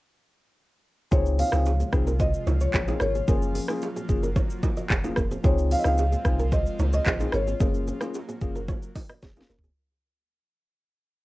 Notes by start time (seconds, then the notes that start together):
1.11 C#2 C3 F3 G#3 C4 D#4 F4 G#4 C5 C#5, kick, low conga, shaker
1.26 shaker
1.39 C4 G#4 F5, open hi-hat, shaker
1.52 C#2 C4 D#4 F4 G#4, cross-stick, low bongo, shaker
1.66 high bongo, shaker
1.80 C4 G#4, shaker
1.93 C2 C4 D#4 F4 G#4, kick, cross-stick, shaker
2.07 C#4 A#4, shaker
2.20 F4 C5 D#5, kick, low conga, shaker
2.34 shaker
2.47 C#2 F4 C#5, low bongo, shaker
2.61 F4 C#5, shaker
2.74 A#1 F4 C5, kick, clap, high bongo, low conga, shaker
2.88 C4 D#4 F4 G#4, low bongo, shaker
3.00 G#1 C#4 A#4 C#5, cross-stick, high bongo, shaker
3.15 C4 G#4, shaker
3.27 F#1 F#3 A#3 C#4 F4 G#4 A#4, kick, low conga, shaker
3.42 shaker
3.55 C4 G#4, open hi-hat, shaker
3.68 A#3 C#4 F4 G#4, cross-stick, low bongo, shaker
3.82 high bongo, shaker
3.96 C4 G#4, shaker
4.09 F#1 A#3 C#4 F4 G#4, kick, shaker
4.23 C#4 A#4, shaker
4.36 F4 C#5, kick, low conga, shaker
4.50 shaker
4.63 F#4 D#5, kick, low bongo, shaker
4.77 F#4 D#5, shaker
4.90 F1 F4 C#5, kick, clap, high bongo, low conga, shaker
5.04 A#3 C#4 F4 G#4, low bongo, shaker
5.16 F1 C#4 A#4, kick, cross-stick, high bongo, shaker
5.31 C4 G#4, shaker
5.44 C#2 G#3 C4 D#4 F4 G#4 C5 C#5, kick, low conga, shaker
5.58 shaker
5.71 C4 G#4 F5, open hi-hat, shaker
5.79 D#5
5.84 C#2 C4 D#4 F4 G#4 F5, cross-stick, low bongo, shaker
5.98 high bongo, shaker
6.12 C4 G#4, shaker
6.25 C2 C4 D#4 F4 G#4, kick, cross-stick, shaker
6.39 C#4 A#4, shaker
6.52 F4 C5 D#5, kick, low conga, shaker
6.66 shaker
6.79 C#2 F4 C#5, low bongo, shaker
6.93 F4 C#5 D#5, shaker
7.06 A#1 F4 C5, kick, clap, high bongo, low conga, shaker
7.20 C4 D#4 F4 G#4, low bongo, shaker
7.32 G#1 C#4 A#4 C#5, cross-stick, high bongo, shaker
7.47 C4 G#4, shaker
7.60 F#1 F#3 A#3 C#4 F4 G#4 A#4, kick, low conga, shaker
7.75 shaker
7.87 C4 G#4, shaker
8.01 A#3 C#4 F4 G#4, cross-stick, low bongo, shaker
8.14 high bongo, shaker
8.29 C4 G#4, shaker
8.41 F#1 A#3 C#4 F4 G#4, kick, shaker
8.56 C#4 A#4, shaker
8.68 F4 C#5, kick, low conga, shaker
8.82 shaker
8.95 F#4 D#5, kick, open hi-hat, low bongo, shaker
9.09 F#4 D#5, cross-stick, shaker
9.22 F1 F4 C#5, kick, snare, high bongo, low conga, shaker
9.36 A#3 C#4 F4 G#4, low bongo, shaker
9.41 snare
9.50 F1 C#4 A#4, high bongo, shaker
9.59 floor tom
9.64 C4 G#4, shaker